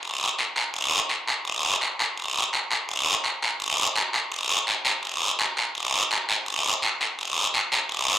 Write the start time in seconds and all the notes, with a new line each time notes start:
0.03 long guiro
0.38 short guiro
0.56 short guiro
0.74 long guiro
1.09 short guiro
1.27 short guiro
1.45 long guiro
1.81 short guiro
1.99 short guiro
2.17 long guiro
2.53 short guiro
2.71 short guiro
2.89 long guiro
3.24 short guiro
3.42 short guiro
3.60 long guiro
3.96 short guiro
4.13 short guiro
4.32 long guiro
4.67 short guiro
4.85 short guiro
5.03 long guiro
5.39 short guiro
5.57 short guiro
5.75 long guiro
6.11 short guiro
6.29 short guiro
6.46 long guiro
6.82 short guiro
7.01 short guiro
7.19 long guiro
7.54 short guiro
7.72 short guiro
7.89 long guiro